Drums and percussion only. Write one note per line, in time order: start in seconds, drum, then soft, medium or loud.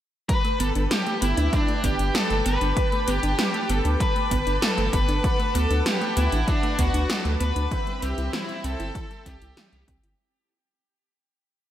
0.29 kick loud
0.29 closed hi-hat medium
0.45 closed hi-hat soft
0.60 closed hi-hat medium
0.75 closed hi-hat medium
0.91 snare loud
0.91 closed hi-hat medium
1.07 closed hi-hat soft
1.22 closed hi-hat medium
1.38 closed hi-hat medium
1.53 kick loud
1.53 closed hi-hat medium
1.68 closed hi-hat soft
1.84 kick medium
1.84 closed hi-hat medium
1.99 closed hi-hat medium
2.15 snare loud
2.15 closed hi-hat medium
2.30 closed hi-hat soft
2.46 closed hi-hat medium
2.61 closed hi-hat soft
2.77 kick loud
2.77 closed hi-hat medium
2.92 closed hi-hat soft
3.08 closed hi-hat medium
3.23 closed hi-hat medium
3.39 snare loud
3.39 closed hi-hat medium
3.54 closed hi-hat soft
3.69 closed hi-hat medium
3.85 closed hi-hat medium
4.00 kick loud
4.00 closed hi-hat medium
4.16 closed hi-hat soft
4.31 kick medium
4.31 closed hi-hat medium
4.47 closed hi-hat medium
4.62 snare loud
4.62 closed hi-hat medium
4.78 closed hi-hat soft
4.93 kick loud
4.93 closed hi-hat medium
5.09 closed hi-hat medium
5.24 kick loud
5.24 closed hi-hat medium
5.40 closed hi-hat soft
5.55 closed hi-hat medium
5.71 closed hi-hat soft
5.86 snare loud
5.86 closed hi-hat medium
6.01 closed hi-hat soft
6.17 closed hi-hat medium
6.32 closed hi-hat medium
6.48 kick loud
6.48 closed hi-hat medium
6.63 closed hi-hat soft
6.79 kick medium
6.79 closed hi-hat medium
6.94 closed hi-hat medium
7.10 snare loud
7.10 closed hi-hat medium
7.25 closed hi-hat soft
7.41 closed hi-hat medium
7.56 closed hi-hat soft
7.71 kick loud
7.71 closed hi-hat soft
7.87 closed hi-hat soft
8.02 closed hi-hat medium
8.18 closed hi-hat soft
8.33 snare loud
8.33 closed hi-hat medium
8.49 closed hi-hat soft
8.64 closed hi-hat medium
8.80 closed hi-hat soft
8.95 kick loud
8.95 closed hi-hat soft
9.11 closed hi-hat soft
9.26 kick medium
9.26 closed hi-hat medium
9.42 closed hi-hat medium
9.57 snare loud
9.57 closed hi-hat soft
9.73 closed hi-hat soft
9.88 kick loud
9.88 closed hi-hat medium
10.04 closed hi-hat soft